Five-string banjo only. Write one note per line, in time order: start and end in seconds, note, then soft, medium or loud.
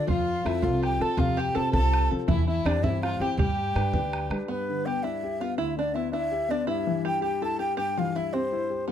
0.08 0.43 F4 medium
0.46 0.62 E4 medium
0.62 0.81 F4 medium
0.83 1.01 G4 medium
1.01 1.17 A4 medium
1.18 1.37 F4 medium
1.37 1.54 G4 medium
1.55 1.72 A4 medium
1.73 2.08 A4 medium
2.28 2.47 E4 medium
2.48 2.64 E4 medium
2.66 2.82 D4 medium
2.83 3.02 E4 medium
3.03 3.21 F4 medium
3.21 3.37 G4 medium
3.39 4.27 G4 medium
4.48 4.87 B3 medium
4.87 5.03 G4 medium
5.04 5.38 E4 medium
5.41 5.58 F4 medium
5.58 5.76 E4 medium
5.79 5.95 D4 medium
5.95 6.12 E4 medium
6.13 6.51 E4 medium
6.51 6.67 D4 medium
6.67 7.06 E4 medium
7.05 7.21 G4 medium
7.22 7.41 G4 medium
7.42 7.60 A4 medium
7.59 7.76 G4 medium
7.77 7.96 G4 loud
7.97 8.14 F4 medium
8.16 8.33 E4 medium
8.34 8.84 C4 medium
8.88 8.92 B3 medium